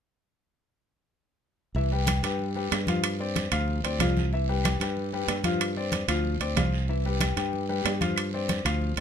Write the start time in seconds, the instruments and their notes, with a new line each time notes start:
1.75 fingered electric bass C2, grand piano E3 E4 E5, high conga, long guiro
1.91 grand piano G3 G4 B4, high conga
2.07 high conga, high timbale, low timbale, short guiro, claves
2.23 fingered electric bass G2, grand piano G3 G4 B4, high conga, high timbale, short guiro
2.39 high conga, long guiro
2.55 grand piano G3 G4 B4, high conga
2.71 fingered electric bass G2, high conga, high timbale, low timbale, short guiro, claves
2.87 grand piano F3 F4 F5, high conga, high timbale, short guiro
3.04 high conga, high timbale, long guiro, claves
3.19 grand piano C4 C5 D5, high conga
3.36 high conga, high timbale, low timbale, short guiro
3.51 fingered electric bass D2, grand piano F3 F4 F5, high conga, high timbale, short guiro, claves
3.68 high conga, long guiro
3.84 fingered electric bass D2, grand piano C4 C5 D5, high conga, high timbale
3.99 fingered electric bass C2, grand piano F3 F4 F5, high conga, high timbale, low timbale, short guiro, claves
4.17 high conga, short guiro
4.33 grand piano E3 E4 E5, high conga, long guiro
4.49 grand piano G3 G4 B4, high conga
4.64 high conga, high timbale, low timbale, short guiro, claves
4.80 fingered electric bass G2, grand piano G3 G4 B4, high conga, high timbale, short guiro
4.97 high conga, long guiro
5.12 grand piano G3 G4 B4, high conga
5.28 fingered electric bass G2, high conga, high timbale, low timbale, short guiro, claves
5.44 grand piano F3 F4 F5, high conga, high timbale, short guiro
5.61 high conga, high timbale, long guiro, claves
5.76 grand piano C4 C5 D5, high conga
5.92 high conga, high timbale, low timbale, short guiro
6.08 fingered electric bass D2, grand piano F3 F4 F5, high conga, high timbale, short guiro, claves
6.24 high conga, long guiro
6.40 fingered electric bass D2, grand piano C4 C5 D5, high conga, high timbale
6.56 fingered electric bass C2, grand piano F3 F4 F5, high conga, high timbale, low timbale, short guiro, claves
6.72 short guiro
6.88 grand piano E3 E4 E5, high conga, long guiro
7.05 grand piano G3 G4 B4, high conga
7.20 high conga, high timbale, low timbale, short guiro, claves
7.37 fingered electric bass G2, grand piano G3 G4 B4, high conga, high timbale, short guiro
7.53 high conga, long guiro
7.69 grand piano G3 G4 B4, high conga
7.85 fingered electric bass G2, high conga, high timbale, low timbale, short guiro, claves
8.01 grand piano F3 F4 F5, high conga, high timbale, short guiro
8.16 high conga, high timbale, long guiro, claves
8.33 grand piano C4 C5 D5, high conga
8.49 high conga, high timbale, low timbale, short guiro
8.65 fingered electric bass D2, grand piano F3 F4 F5, high conga, high timbale, short guiro, claves
8.81 high conga, long guiro
8.97 fingered electric bass D2, high timbale